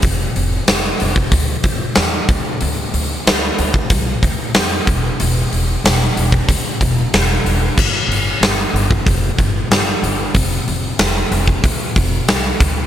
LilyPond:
<<
  \new Staff \with { instrumentName = "Upright bass" } { \clef bass \time 4/4 \key f \major \tempo 4 = 93 f,,8 f,,8 f,,8 f,,8 d,8 f,,8 e,8 d,8 | d,8 d,8 d,8 d,8 c,8 d,8 f,8 e,,8 | e,,8 e,,8 e,,8 e,,8 d,8 e,,8 e,,8 e,,8 | g,,8 g,,8 g,,8 g,,8 f,,8 g,,8 g,,8 g,,8 |
f,,8 f,,8 f,,8 f,,8 d,8 f,,8 c,8 d,8 | }
  \new DrumStaff \with { instrumentName = "Drums" } \drummode { \time 4/4 <hho bd>8 hho8 <hho sn>8 hho16 bd16 <hho bd>8 <hho bd>8 <hho sn>8 <hho bd>8 | hho8 hho8 <hho sn>8 hho16 bd16 <hho bd>8 <hho bd>8 <hho sn>8 <hho bd>8 | hho8 hho8 <hho sn>8 hho16 bd16 <hho bd>8 <hho bd>8 <hho sn>8 hho8 | <cymc bd>8 hho8 <hho sn>8 hho16 bd16 <hho bd>8 <hho bd>8 <hho sn>8 hho8 |
<hho bd>8 hho8 <hho sn>8 hho16 bd16 <hho bd>8 <hho bd>8 <hho sn>8 <hho bd>8 | }
>>